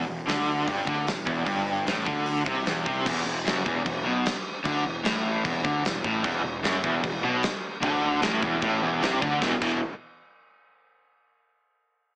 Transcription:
0.07 E1 E2
0.27 D2 D3, snare, open hi-hat
0.66 G1 G2, kick, open hi-hat
0.85 D2 D3, kick
1.07 E1 E2, snare, open hi-hat
1.26 E1 E2, kick
1.46 G1 G2, kick, open hi-hat
1.85 A1 A2, snare, open hi-hat
2.06 D2 D3, kick
2.26 open hi-hat
2.45 C2 C3, kick
2.66 E1 E2, snare, open hi-hat
2.85 C2 C3, kick
3.05 E1 E2, kick, crash
3.25 E1 E2
3.45 F#1 F#2, snare, crash
3.65 E1 E2, kick
3.85 E1 E2, kick, crash
4.05 B1 B2
4.26 snare, crash
4.64 D2 D3, kick, crash
4.84 E1 E2
5.04 A1 A2, snare, crash
5.44 E1 E2, kick, crash
5.64 D2 D3, kick
5.84 E1 E2, snare, crash
6.04 A1 A2, kick
6.24 E1 E2, kick, crash
6.44 E1 E2
6.63 F#1 F#2, snare, crash
6.84 E1 E2, kick
7.04 E1 E2, kick, crash
7.23 B1 B2
7.43 snare, crash
7.81 D2 D3, kick, crash
8.22 A1 A2, snare, crash
8.42 E1 E2, kick
8.61 A1 A2, kick, crash
8.81 E1 E2
9.01 C2 C3, snare, crash
9.21 D2 D3, kick
9.40 E1 E2 B2 E3, kick, snare
9.61 E1 E2 B2 E3, kick, crash

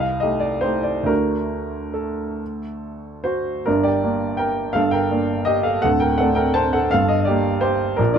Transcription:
Already playing: C2 D#5
0.00 F5
0.20 A3 D#4 G4 D#5
0.40 D5
0.61 A3 D#4 G4 C5
0.83 D5
1.03 D2 A3 D4 F#4 A#4
1.94 A4
3.24 F#4 C5
3.66 G1 G2 D4 A#4
3.83 G4 D5
4.03 A#3 D4
4.37 A#4 G5
4.73 G1 G2 A4 F5
4.91 A#4 G5
5.11 A#3 D4
5.45 G4 D#5
5.63 A4 F5
5.82 D1 D2 A4 F#5
6.00 A#4 G5
6.18 A3 C4 D4 A4 F#5
6.35 A#4 G5
6.54 C5 A5
6.73 A4 F#5
6.91 G1 G2 A4 F5
7.08 D#5
7.20 D#5
7.25 G3 D4 G4 D5
7.29 A#3
7.61 G4 C5
7.97 A#1 A#2 D4 A#4
8.14 D5

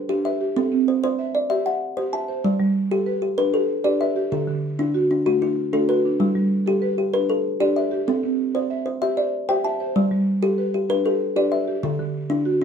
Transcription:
Already playing: B4 C5
0.09 D4 G4
0.25 B4 E5
0.41 G4
0.56 C4 A4
0.72 C4
0.88 C5
1.03 C5 D5
1.19 E5
1.35 D5
1.50 G4 E5
1.66 E5 F#5
1.97 G4 C5
2.13 E5 A5
2.28 C5
2.44 G3 D5
2.60 G3
2.91 G4 A4
3.06 B4
3.22 G4
3.38 D4 B4
3.53 G4 A4
3.84 D4 G4 B4 D5
4.01 B4 E5
4.16 G4
4.32 D3 A4
4.47 D3
4.79 D4 E4
4.94 F#4
5.11 D4
5.26 A3 F#4
5.42 D4 E4
5.73 A3 D4 F#4 A4
5.89 F#4 B4
6.05 D4
6.20 G3 E4
6.35 G3
6.66 G4 A4
6.82 B4
6.98 G4
7.13 D4 B4
7.30 A4
7.60 D4 G4 B4 D5
7.76 B4 E5
7.91 G4
8.07 C4 A4
8.23 C4
8.55 C5 D5
8.70 E5
8.86 C5
9.02 G4 E5
9.17 C5 D5
9.49 G4 C5 E5 G5
9.64 E5 A5
9.80 C5
9.95 G3 D5
10.11 G3
10.42 G4 A4
10.58 B4
10.74 G4
10.89 D4 B4
11.05 G4 A4
11.36 D4 G4 B4 D5
11.52 B4 E5
11.68 G4
11.83 D3 A4
11.99 D3
12.30 D4 E4
12.45 F#4

